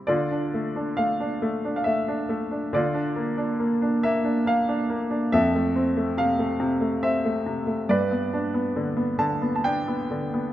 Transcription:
Already playing: G3 C4 E4
0.07 D3 F4 D5
0.31 D4
0.54 A3
0.76 D4
0.97 A3 F5
1.20 D4
1.42 A3
1.65 D4
1.76 F5
1.84 A3 E5
2.08 D4
2.29 A3
2.51 D4
2.73 D3 F4 D5
2.94 D4
3.16 A#3
3.38 D4
3.60 A#3
3.82 D4
4.03 A#3 E5
4.24 D4
4.46 A#3 F5
4.68 D4
4.90 A#3
5.11 D4
5.32 F2 A4 E5
5.55 A3
5.76 C4
5.97 A3
6.17 C3 F5
6.39 A3
6.60 C3
6.81 A3
7.03 C4 E5
7.25 A3
7.46 C3
7.67 A3
7.89 G2 B4 D5
8.11 B3
8.33 D4
8.54 B3
8.76 D3
8.97 B3
9.19 D3 A5
9.42 B3
9.56 A5
9.64 D4 G5
9.88 B3
10.11 D3
10.34 B3

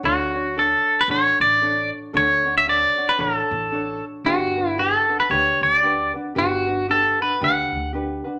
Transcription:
0.03 D2 D4 F#4 A4 C#5
0.35 D4 F#4 C#5
0.57 D4 F#4 A4 C#5
1.01 B4
1.08 A1 D4 F#4 A4 C#5
1.40 A1 D5
1.62 D4 F#4 A4 C#5
2.13 D2 D4 F#4 A4 C#5
2.44 D4 F#4 C#5
2.58 E5
2.66 D4 F#4 A4 C#5 D5
2.97 D4 F#4 C#5
3.09 B4
3.18 A1 D4 F#4 A4 A#4 C#5
3.37 A4
3.51 A1
3.72 D4 F#4 A4 C#5
4.24 G1 D4 F#4 G4 B4
4.56 D4 F#4 B4
4.69 E4
4.77 D4 F#4 G4 A4 B4
5.08 D4 F#4 B4
5.20 B4
5.29 D2 D4 F#4 G4 B4 C#5
5.61 D2 D5
5.82 D4 F#4 G4 B4
6.13 D4 F#4 B4
6.35 G1 D4 F#4 G4 B4
6.67 D4 F#4 B4
6.88 D4 F#4 G4 A4 B4
7.20 D4 F#4 B4
7.40 D2 D4 F#4 G4 B4 F#5
7.72 D2
7.93 D4 F#4 G4 B4
8.24 D4 F#4 B4

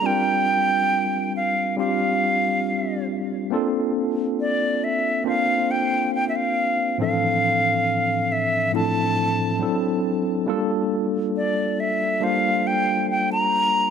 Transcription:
0.02 G3 C4 D4 F4 A#4 G5
1.36 F5
1.77 G3 C4 D4 F4 G4 F5
3.50 A#3 C4 D4 F4 A4
4.40 D5
4.84 E5
5.24 A#3 C4 D4 F4 C5 F5
5.71 G5
6.15 G5
6.29 E5
6.36 F5
6.98 A2 E3 F3 C4 D4 A4 F5
8.32 E5
8.72 A2 F3 C4 D4 E4 A4 A5
9.59 F#3 C4 D4 E4 A4
10.46 G3 A#3 D4 F4 A4
11.37 D5
11.80 E5
12.20 G3 A#3 D4 F4 C5 F5
12.67 G5
13.11 G5
13.32 A#5

